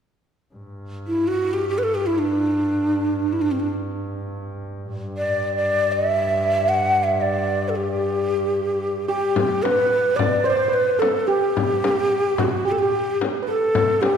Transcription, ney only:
1.07 1.29 E4 medium
1.28 1.55 F#4 medium
1.53 1.68 G4 medium
1.69 1.80 G4 medium
1.78 1.85 B4 medium
1.83 1.96 A4 medium
1.95 2.08 G4 medium
2.06 2.20 E4 medium
2.18 3.34 D4 medium
3.33 3.43 E4 medium
3.42 3.53 D4 medium
3.51 3.61 C4 medium
3.60 3.70 D4 soft
5.17 5.55 D5 medium
5.57 5.94 D5 medium
5.92 6.70 E5 medium
6.68 7.05 F#5 medium
7.04 7.23 E5 medium
7.21 7.70 D5 medium
7.69 7.77 A4 soft
7.76 9.07 G4 medium
9.08 9.64 G4 medium
9.63 10.18 B4 medium
10.16 10.47 D5 medium
10.46 10.75 C5 medium
10.73 11.01 B4 medium
11.00 11.29 A4 medium
11.27 12.41 G4 medium
12.40 12.66 F#4 medium
12.67 12.73 G4 medium
12.71 12.80 A4 medium
12.79 13.21 G4 medium
13.47 14.03 A4 medium
14.01 14.17 G4 medium

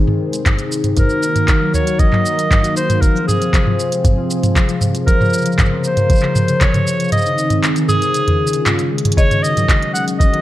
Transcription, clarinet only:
0.98 1.71 A#4 loud
1.74 2.01 C#5 medium
1.99 2.76 D#5 loud
2.76 3.02 C5 loud
3.01 3.27 A#4 medium
3.27 4.01 G#4 medium
5.06 5.55 A#4 loud
5.86 6.64 C5 medium
6.62 7.12 C#5 loud
7.12 7.60 D#5 loud
7.89 8.88 G#4 loud
9.17 9.44 C#5 loud
9.43 9.93 D#5 loud
9.94 10.05 F#5 medium
10.19 10.41 D#5 loud

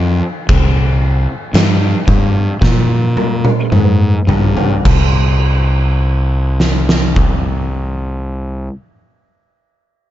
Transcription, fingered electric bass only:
0.00 0.20 F2 loud
0.49 1.25 C2 medium
1.53 1.93 G2 medium
2.08 2.47 G2 medium
2.61 3.42 A#2 loud
3.72 4.13 G#2 loud
4.27 4.69 G2 medium
4.85 8.67 C2 medium

